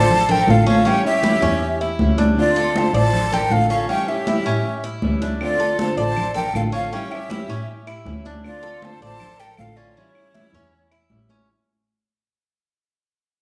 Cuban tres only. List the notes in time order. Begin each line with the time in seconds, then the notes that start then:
Already playing: D5
0.29 A4
0.67 C#4
0.85 C#4
1.23 E4
1.42 C#4
1.81 E4
2.18 D4
2.56 A4
2.94 D5
3.32 A4
3.70 C#4
3.89 C#4
4.28 E4
4.46 C#4
4.84 E4
5.22 D4
5.60 A4
5.97 D5
6.34 A4
6.72 C#4
6.93 C#4
7.30 E4
7.50 C#4
7.87 E4
8.26 D4
8.63 A4
9.02 D5
9.40 A4
9.77 C#4
9.97 C#4
10.34 E4
10.54 C#4
10.92 E4
11.30 C#4